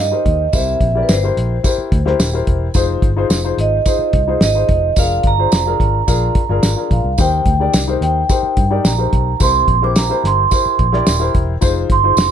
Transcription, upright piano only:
0.11 0.44 D#4 medium
0.11 0.44 G4 medium
0.11 0.44 A#4 medium
0.11 0.44 C5 medium
0.53 1.33 C3 medium
0.53 0.85 E4 medium
0.53 0.85 G4 medium
0.53 0.86 A#4 medium
0.53 0.86 C5 medium
0.95 1.16 E4 medium
0.95 1.17 G4 medium
0.95 1.17 A#4 medium
0.95 1.17 D5 medium
1.23 1.55 E4 medium
1.23 1.55 G4 medium
1.23 1.56 A#4 medium
1.23 1.56 C5 medium
1.64 1.96 E4 medium
1.64 1.96 G4 medium
1.64 1.97 A#4 medium
1.64 1.97 C5 medium
2.06 2.27 E4 medium
2.06 2.27 G4 medium
2.06 2.28 A#4 medium
2.06 2.28 C5 medium
2.33 2.66 E4 medium
2.33 2.66 G4 medium
2.33 2.66 A#4 medium
2.33 2.66 C5 medium
2.74 3.07 D#4 medium
2.74 3.07 F4 medium
2.74 3.07 G#4 medium
2.74 3.08 C5 medium
3.16 3.38 D#4 medium
3.16 3.38 F4 medium
3.16 3.38 G#4 medium
3.16 3.39 C5 medium
3.44 3.77 D#4 medium
3.44 3.76 F4 medium
3.44 3.77 G#4 medium
3.44 3.77 C5 medium
3.86 4.18 D#4 medium
3.86 4.18 F4 medium
3.86 4.18 G#4 medium
3.86 4.19 C5 medium
4.28 4.49 D#4 medium
4.28 4.49 F4 medium
4.28 4.49 G#4 medium
4.28 4.50 C5 medium
4.55 4.87 D#4 medium
4.55 4.87 F4 medium
4.55 4.88 G#4 soft
4.55 4.88 C5 medium
4.97 5.29 D4 medium
4.97 5.29 F4 medium
4.97 5.29 G#4 medium
4.97 5.30 A#4 medium
5.38 5.59 D4 medium
5.38 5.60 F4 medium
5.38 5.60 G#4 medium
5.38 5.61 C5 medium
5.66 5.98 D4 medium
5.66 5.98 F4 medium
5.66 5.99 G#4 medium
5.66 5.99 A#4 medium
6.07 6.39 D4 medium
6.07 6.40 F4 medium
6.07 6.40 G#4 medium
6.07 6.40 A#4 medium
6.49 6.71 D4 medium
6.49 6.71 F4 medium
6.49 6.71 G#4 medium
6.49 6.72 A#4 medium
6.76 7.09 D4 medium
6.76 7.09 F4 medium
6.76 7.09 G#4 medium
6.76 7.10 A#4 medium
7.18 7.98 D#3 medium
7.18 7.51 D#4 medium
7.18 7.51 G4 medium
7.18 7.51 A#4 medium
7.18 7.52 C5 medium
7.60 7.81 D#4 medium
7.60 7.82 G4 medium
7.60 7.82 A#4 medium
7.60 7.82 D5 medium
7.88 8.20 D#4 medium
7.88 8.20 G4 medium
7.88 8.20 A#4 medium
7.88 8.21 C5 medium
8.29 8.62 D#4 medium
8.29 8.62 G4 medium
8.29 8.62 A#4 medium
8.29 8.62 C5 medium
8.70 8.92 D#4 medium
8.70 8.93 G4 medium
8.70 8.93 A#4 medium
8.70 8.93 D5 medium
8.98 9.31 D#4 medium
8.98 9.31 G4 medium
8.98 9.31 A#4 medium
8.98 9.31 C5 medium
9.40 10.20 C3 medium
9.40 9.72 E4 medium
9.40 9.73 G4 medium
9.40 9.73 A#4 medium
9.40 9.73 C5 medium
9.82 10.04 E4 medium
9.82 10.04 G4 medium
9.82 10.04 A#4 medium
9.82 10.04 C5 medium
10.09 10.42 E4 medium
10.09 10.42 G4 medium
10.09 10.42 A#4 medium
10.09 10.43 C5 medium
10.51 10.83 E4 medium
10.51 10.84 G4 medium
10.51 10.84 A#4 medium
10.51 10.84 C5 medium
10.92 11.14 E4 medium
10.92 11.14 G4 medium
10.92 11.15 A#4 medium
10.92 11.15 D5 medium
11.20 11.52 E4 medium
11.20 11.52 G4 medium
11.20 11.53 A#4 medium
11.20 11.53 C5 medium
11.61 11.94 D#4 medium
11.61 11.94 F4 medium
11.61 11.94 G#4 medium
11.61 11.94 C5 medium
12.04 12.25 D#4 medium
12.04 12.26 F4 medium
12.04 12.26 G#4 medium
12.04 12.26 C5 medium

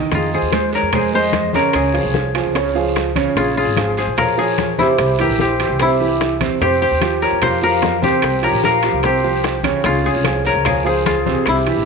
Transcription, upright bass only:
0.12 0.41 F2 loud
0.42 0.81 D#2 medium
0.82 1.60 F2 medium
1.74 2.03 C#2 loud
2.04 2.43 C2 medium
2.45 3.22 C#2 medium
3.36 3.65 A#1 loud
3.66 4.05 G#1 medium
4.07 4.84 A#1 medium
4.99 5.28 C2 loud
5.29 5.67 A#1 medium
5.69 6.46 C2 medium
6.61 6.90 F2 loud
6.91 7.30 D#2 medium
7.32 8.09 F2 medium
8.22 8.51 C2 loud
8.52 8.91 A#1 medium
8.93 9.70 C2 medium
9.84 10.13 C#2 loud
10.14 10.53 C2 medium
10.54 11.32 C#2 medium
11.46 11.75 C2 loud
11.76 11.85 A#1 loud

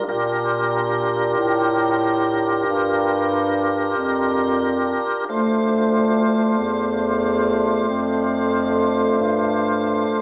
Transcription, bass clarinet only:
0.08 1.34 A#2 medium
1.37 2.64 A2 medium
2.67 3.94 G2 medium
3.97 4.98 F2 medium
5.27 6.53 D2 medium
6.58 7.84 E2 medium
7.88 9.14 F2 medium
9.20 10.19 G2 medium

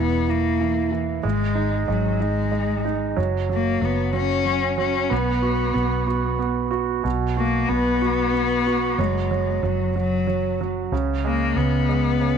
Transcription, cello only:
0.00 0.32 B3 medium
0.30 0.93 A#3 medium
1.26 1.86 G#3 medium
1.90 2.24 F#3 medium
2.23 2.94 G#3 medium
3.54 3.86 A#3 medium
3.84 4.16 B3 medium
4.16 4.76 C#4 loud
4.80 5.14 C#4 medium
5.12 6.41 B3 medium
7.37 7.71 A#3 medium
7.69 9.02 B3 loud
9.00 9.67 G#3 medium
9.65 9.96 F#3 medium
9.98 10.65 F#3 medium
11.25 11.58 A#3 medium
11.57 12.38 B3 medium

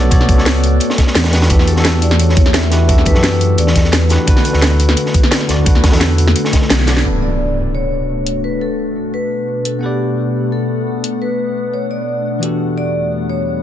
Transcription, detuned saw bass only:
0.03 0.36 B1 loud
0.38 0.79 C#2 loud
1.15 1.49 E2 loud
1.50 3.14 E2 loud
3.15 3.57 F#2 medium
3.58 3.74 E2 loud
3.76 4.18 E2 medium
4.54 4.96 D2 medium
5.49 5.57 D2 medium
5.58 5.91 D2 loud
5.93 6.34 E2 medium
6.70 7.04 B1 loud

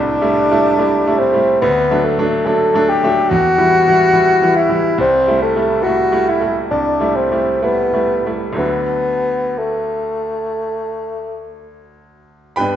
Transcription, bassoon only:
0.00 1.20 D4 loud
1.19 1.61 C4 loud
1.61 2.07 B3 loud
2.05 2.48 A3 loud
2.46 2.90 A4 loud
2.89 3.31 G4 loud
3.30 4.57 F#4 loud
4.56 4.99 E4 loud
5.00 5.41 C4 loud
5.42 5.85 A3 loud
5.83 6.31 F#4 loud
6.29 6.58 E4 medium
6.71 7.17 D4 loud
7.16 7.63 C4 medium
7.64 8.25 B3 loud
8.58 9.60 B3 loud
9.59 11.61 A3 medium

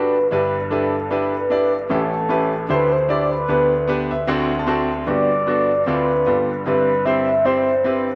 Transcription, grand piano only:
0.00 0.28 G1 medium
0.00 0.28 G2 medium
0.00 0.15 D4 medium
0.00 0.15 F#4 medium
0.00 0.15 G4 medium
0.00 0.16 A4 medium
0.31 1.86 G1 medium
0.31 1.86 G2 medium
0.31 0.54 D4 medium
0.31 0.55 E4 medium
0.31 0.55 G4 medium
0.31 0.55 B4 medium
0.71 0.94 D4 medium
0.71 0.94 E4 medium
0.71 0.94 G4 medium
0.71 0.95 B4 medium
1.11 1.34 D4 medium
1.11 1.34 E4 medium
1.11 1.34 G4 medium
1.11 1.34 B4 medium
1.50 1.73 D4 medium
1.50 1.73 E4 medium
1.50 1.74 G4 medium
1.50 1.74 D5 medium
1.89 2.65 A1 medium
1.89 2.65 A2 medium
1.89 2.13 C#4 medium
1.89 2.13 E4 medium
1.89 2.13 G4 medium
1.89 2.13 A4 medium
2.29 2.52 C#4 medium
2.29 2.52 E4 medium
2.29 2.53 G4 medium
2.29 2.53 B4 medium
2.69 3.45 D2 medium
2.69 3.45 D3 medium
2.69 2.92 D4 medium
2.69 2.92 E4 medium
2.69 2.92 G4 medium
2.69 2.93 C5 medium
3.09 3.32 D4 medium
3.09 3.32 E4 medium
3.09 3.32 G4 medium
3.09 3.32 D5 medium
3.48 4.24 D2 medium
3.48 4.24 D3 medium
3.48 3.71 B3 medium
3.48 3.71 D4 medium
3.48 3.72 G4 medium
3.48 3.72 B4 medium
3.88 4.11 B3 medium
3.88 4.11 D4 medium
3.88 4.11 G4 medium
3.88 4.12 B4 medium
4.11 4.27 E5 medium
4.27 5.03 D2 medium
4.27 5.03 D3 medium
4.27 4.50 C4 medium
4.27 4.51 D4 medium
4.27 4.51 F#4 medium
4.27 4.51 A4 medium
4.27 4.57 F#5 medium
4.59 4.66 A5 medium
4.66 4.90 C4 medium
4.66 4.90 D4 medium
4.66 4.90 F#4 medium
4.66 4.91 A4 medium
4.66 5.04 A5 medium
5.06 5.82 G1 medium
5.06 5.82 G2 medium
5.06 5.30 B3 medium
5.06 5.30 D4 medium
5.06 5.30 F#4 medium
5.06 5.30 G4 medium
5.47 5.70 B3 medium
5.47 5.70 D4 medium
5.47 5.70 F#4 medium
5.47 5.70 A4 medium
5.86 6.24 D2 medium
5.86 6.24 D3 medium
5.86 6.09 C4 medium
5.86 6.10 D4 medium
5.86 6.10 F4 medium
5.86 6.10 A4 medium
6.26 6.63 G1 medium
6.26 6.63 G2 medium
6.26 6.49 B3 medium
6.26 6.49 F4 medium
6.26 6.50 G4 medium
6.26 6.50 A4 medium
6.66 8.15 G1 medium
6.66 8.15 G2 medium
6.66 6.89 C4 medium
6.66 6.89 E4 medium
6.66 6.89 G4 medium
6.66 6.89 B4 medium
7.05 7.28 C4 medium
7.05 7.28 E4 medium
7.05 7.29 G4 medium
7.05 7.29 C5 medium
7.45 7.68 C4 medium
7.45 7.68 E4 medium
7.45 7.68 G4 medium
7.45 7.69 C5 medium
7.84 8.07 C4 medium
7.84 8.08 E4 medium
7.84 8.08 G4 medium
7.84 8.08 B4 medium

